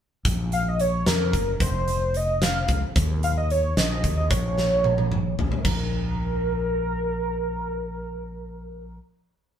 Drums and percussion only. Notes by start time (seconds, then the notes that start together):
0.25 kick, closed hi-hat
0.52 closed hi-hat
0.79 closed hi-hat
1.06 snare, closed hi-hat
1.33 kick, closed hi-hat
1.60 kick, closed hi-hat
1.88 closed hi-hat
2.14 closed hi-hat
2.42 snare, closed hi-hat
2.68 kick, closed hi-hat
2.96 kick, closed hi-hat
3.23 closed hi-hat
3.50 closed hi-hat
3.77 snare, closed hi-hat
4.04 kick, closed hi-hat
4.31 kick, closed hi-hat
4.58 snare
4.84 high tom
4.98 high tom
5.12 mid tom
5.39 floor tom
5.52 floor tom
5.65 kick, crash